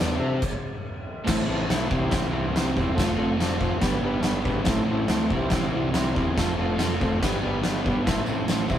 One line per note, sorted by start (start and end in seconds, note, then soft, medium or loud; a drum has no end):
0.00 0.19 E2 medium
0.00 0.18 E3 loud
0.00 0.16 B3 loud
0.00 0.14 D4 medium
0.00 0.17 E4 loud
0.00 0.15 A4 medium
0.00 0.15 D5 loud
0.16 0.40 C3 medium
0.16 0.39 C4 medium
0.16 0.36 D4 medium
0.16 0.40 G4 medium
0.16 0.36 A4 medium
0.16 0.40 C5 loud
0.16 0.36 E5 medium
0.42 kick loud
0.42 crash loud
1.25 1.47 A1 loud
1.25 1.45 A2 loud
1.25 1.46 E3 loud
1.25 1.46 A3 loud
1.25 1.47 C4 loud
1.25 1.48 E4 loud
1.25 1.43 E4 loud
1.25 1.44 A4 loud
1.25 kick loud
1.25 snare loud
1.25 crash loud
1.25 crash medium
1.30 1.44 C5 loud
1.46 1.68 A1 loud
1.46 1.67 A2 medium
1.46 1.68 E3 medium
1.46 1.69 A3 medium
1.46 1.70 C4 loud
1.46 1.64 E4 medium
1.46 1.70 E4 medium
1.46 1.65 A4 medium
1.50 1.65 C5 medium
1.68 1.90 B1 medium
1.68 1.87 A2 loud
1.68 1.87 E3 loud
1.68 1.90 A3 loud
1.68 1.89 C4 loud
1.68 1.90 E4 loud
1.68 snare loud
1.68 crash medium
1.73 1.88 E4 medium
1.73 1.87 A4 medium
1.73 1.87 B4 loud
1.87 2.11 C2 medium
1.87 2.07 C3 loud
1.87 2.09 E3 medium
1.87 2.09 G3 loud
1.87 2.09 C4 loud
1.87 2.11 E4 loud
1.87 kick loud
1.92 2.26 E4 loud
1.92 2.27 G4 medium
1.92 2.27 C5 loud
2.09 2.31 A1 medium
2.09 2.28 C3 loud
2.09 2.30 E3 medium
2.09 2.31 G3 medium
2.09 2.31 C4 medium
2.09 2.33 E4 loud
2.09 kick loud
2.09 snare loud
2.09 crash medium
2.30 2.53 C2 medium
2.30 2.52 C3 medium
2.30 2.53 E3 medium
2.30 2.53 G3 loud
2.30 2.55 C4 loud
2.34 2.55 E4 loud
2.34 2.50 E4 loud
2.34 2.50 G4 medium
2.34 2.51 C5 loud
2.53 2.75 C2 loud
2.53 2.73 C3 medium
2.53 2.74 E3 medium
2.53 2.74 G3 medium
2.53 2.76 C4 loud
2.53 2.71 E4 medium
2.53 2.76 E4 medium
2.53 2.71 G4 medium
2.53 snare loud
2.53 crash medium
2.57 2.72 C5 loud
2.74 2.97 E2 medium
2.74 2.95 C3 medium
2.74 2.95 E3 medium
2.74 2.96 G3 loud
2.74 2.95 C4 medium
2.74 2.92 E4 medium
2.74 2.97 E4 loud
2.74 2.92 G4 medium
2.74 2.93 C5 medium
2.74 kick medium
2.95 3.17 F1 medium
2.95 3.13 F3 medium
2.95 3.15 A3 loud
2.95 3.16 C4 loud
2.95 3.13 F4 loud
2.95 3.17 F4 loud
2.95 3.12 A4 loud
2.95 3.12 C5 loud
2.95 kick loud
2.95 snare loud
2.99 crash medium
3.15 3.37 F1 loud
3.15 3.35 F3 medium
3.15 3.37 A3 medium
3.15 3.37 C4 loud
3.15 3.38 F4 medium
3.15 3.34 A4 medium
3.15 3.34 C5 loud
3.19 3.34 F4 medium
3.36 3.59 F1 medium
3.36 3.58 F3 loud
3.36 3.59 A3 loud
3.36 3.59 C4 loud
3.36 3.61 F4 loud
3.40 3.57 F4 medium
3.40 3.57 A4 medium
3.40 3.57 D5 loud
3.40 snare loud
3.40 crash medium
3.59 3.81 F1 medium
3.59 3.80 F3 medium
3.59 3.81 A3 medium
3.59 3.81 C4 loud
3.59 3.77 F4 medium
3.59 3.82 F4 loud
3.59 3.78 A4 medium
3.59 3.77 C5 loud
3.59 kick medium
3.80 4.02 G1 medium
3.80 3.98 G2 loud
3.80 4.00 D3 loud
3.80 3.99 G3 loud
3.80 4.01 B3 loud
3.80 3.98 D4 loud
3.80 4.02 D4 loud
3.80 3.98 G4 loud
3.80 3.98 B4 loud
3.80 kick loud
3.80 snare loud
3.80 crash medium
3.99 4.22 G1 medium
3.99 4.19 G2 medium
3.99 4.20 D3 loud
3.99 4.22 G3 loud
3.99 4.22 B3 loud
4.03 4.22 D4 loud
4.03 4.20 D4 medium
4.03 4.20 G4 medium
4.03 4.21 B4 loud
4.20 4.44 G1 loud
4.20 4.41 G2 medium
4.20 4.43 D3 loud
4.20 4.43 G3 medium
4.20 4.44 B3 loud
4.20 4.45 D4 loud
4.20 snare loud
4.20 crash medium
4.25 4.40 D4 medium
4.25 4.41 G4 medium
4.25 4.41 B4 loud
4.43 4.65 G#1 loud
4.43 4.63 G2 medium
4.43 4.64 D3 medium
4.43 4.65 G3 medium
4.43 4.65 B3 medium
4.43 4.61 D4 medium
4.43 4.66 D4 medium
4.43 4.61 G4 medium
4.43 4.61 B4 loud
4.43 kick medium
4.64 4.87 A1 loud
4.64 4.84 A2 medium
4.64 4.85 E3 loud
4.64 4.87 A3 loud
4.64 4.86 C4 loud
4.64 4.88 E4 loud
4.64 4.83 E4 loud
4.64 kick loud
4.64 snare loud
4.64 crash medium
4.68 4.84 A4 loud
4.68 4.83 C5 loud
4.85 5.08 A1 loud
4.85 5.06 A2 medium
4.85 5.07 E3 loud
4.85 5.08 A3 loud
4.85 5.09 C4 medium
4.85 5.09 E4 loud
4.90 5.05 E4 medium
4.90 5.06 A4 medium
4.90 5.05 C5 loud
5.07 5.29 D2 medium
5.07 5.28 A2 loud
5.07 5.29 E3 loud
5.07 5.30 A3 loud
5.07 5.30 C4 loud
5.07 5.25 E4 loud
5.07 5.30 E4 loud
5.07 5.26 A4 medium
5.07 snare loud
5.07 crash medium
5.11 5.26 C5 loud
5.30 5.51 C2 medium
5.30 5.50 C3 loud
5.30 5.51 E3 loud
5.30 5.52 G3 loud
5.30 5.53 C4 loud
5.30 kick medium
5.34 5.54 E4 loud
5.34 5.67 E4 medium
5.34 5.67 G4 medium
5.34 5.67 C5 loud
5.50 5.72 A1 medium
5.50 5.70 C3 loud
5.50 5.71 E3 loud
5.50 5.72 G3 medium
5.50 5.73 C4 medium
5.50 kick loud
5.50 snare loud
5.50 crash medium
5.55 5.73 E4 loud
5.71 5.94 C2 medium
5.71 5.92 C3 loud
5.71 5.92 E3 loud
5.71 5.93 G3 loud
5.71 5.94 C4 loud
5.71 5.95 E4 loud
5.76 5.90 E4 loud
5.76 5.90 G4 medium
5.76 5.90 C5 medium
5.93 6.15 C2 loud
5.93 6.13 C3 medium
5.93 6.15 E3 loud
5.93 6.15 G3 loud
5.93 6.15 C4 loud
5.93 6.11 E4 medium
5.93 6.17 E4 loud
5.93 6.10 G4 medium
5.93 6.11 C5 loud
5.93 snare loud
5.93 crash medium
6.15 6.36 E2 medium
6.15 6.35 C3 medium
6.15 6.36 E3 medium
6.15 6.36 G3 medium
6.15 6.36 C4 loud
6.15 6.31 E4 medium
6.15 6.37 E4 loud
6.15 6.32 G4 medium
6.15 6.32 C5 loud
6.15 kick medium
6.37 6.57 F1 loud
6.37 6.56 F3 loud
6.37 6.56 A3 loud
6.37 6.58 C4 loud
6.37 6.53 F4 loud
6.37 6.58 F4 loud
6.37 6.54 A4 loud
6.37 6.53 C5 loud
6.37 kick loud
6.37 snare loud
6.37 crash medium
6.57 6.78 F1 loud
6.57 6.76 F3 loud
6.57 6.77 A3 medium
6.57 6.78 C4 medium
6.57 6.74 F4 medium
6.57 6.79 F4 loud
6.57 6.74 A4 medium
6.57 6.74 C5 loud
6.78 7.00 F1 medium
6.78 6.99 F3 loud
6.78 6.99 A3 loud
6.78 7.01 C4 loud
6.78 7.01 F4 loud
6.78 snare loud
6.78 crash medium
6.82 6.96 F4 loud
6.82 6.96 A4 medium
6.82 6.96 C5 loud
7.00 7.23 F1 medium
7.00 7.20 F3 medium
7.00 7.20 A3 loud
7.00 7.21 C4 medium
7.00 7.16 F4 medium
7.00 7.21 F4 loud
7.00 7.17 A4 medium
7.00 7.17 C5 loud
7.00 kick loud
7.19 7.43 G1 loud
7.19 7.38 G2 loud
7.19 7.39 D3 loud
7.19 7.40 G3 loud
7.19 7.41 B3 loud
7.19 7.41 D4 loud
7.19 7.38 D4 loud
7.19 kick loud
7.19 snare loud
7.19 crash medium
7.24 7.38 G4 loud
7.24 7.38 B4 loud
7.39 7.61 G2 loud
7.39 7.61 D3 loud
7.39 7.62 G3 loud
7.39 7.63 B3 medium
7.39 7.63 D4 medium
7.43 7.63 G1 loud
7.43 7.59 D4 medium
7.43 7.59 G4 medium
7.43 7.59 B4 loud
7.62 7.84 G1 medium
7.62 7.82 G2 medium
7.62 7.83 D3 medium
7.62 7.84 G3 medium
7.62 7.85 B3 medium
7.62 7.86 D4 loud
7.62 7.80 G4 medium
7.62 snare loud
7.62 crash medium
7.66 7.81 D4 medium
7.66 7.81 B4 loud
7.83 8.05 G1 medium
7.83 8.03 G2 medium
7.83 8.05 D3 medium
7.83 8.05 G3 loud
7.83 8.05 B3 medium
7.83 8.06 D4 loud
7.83 kick medium
7.88 8.03 D4 medium
7.88 8.02 G4 medium
7.88 8.03 B4 loud
8.04 8.27 A1 loud
8.04 8.23 A2 loud
8.04 8.25 E3 loud
8.04 8.25 A3 loud
8.04 8.26 C4 loud
8.04 8.22 E4 loud
8.04 kick loud
8.04 snare loud
8.04 crash medium
8.08 8.27 E4 loud
8.08 8.23 A4 loud
8.08 8.23 C5 loud
8.24 8.47 A1 medium
8.24 8.44 A2 medium
8.24 8.45 E3 medium
8.24 8.47 A3 medium
8.24 8.47 C4 medium
8.24 tambourine medium
8.28 8.49 E4 medium
8.28 8.45 E4 medium
8.28 8.45 C5 medium
8.32 8.46 A4 medium
8.46 8.68 A1 medium
8.46 8.66 A2 loud
8.46 8.67 E3 loud
8.46 8.68 A3 loud
8.46 8.69 C4 loud
8.46 8.65 E4 medium
8.46 snare loud
8.46 tambourine medium
8.46 crash medium
8.50 8.69 E4 loud
8.50 8.66 A4 medium
8.50 8.66 C5 loud
8.66 8.79 C2 medium
8.66 8.79 C3 medium
8.66 8.79 E3 loud
8.66 8.79 G3 loud
8.66 8.79 C4 medium
8.66 kick medium
8.66 tambourine medium
8.70 8.79 E4 loud
8.70 8.79 G4 loud
8.70 8.79 C5 loud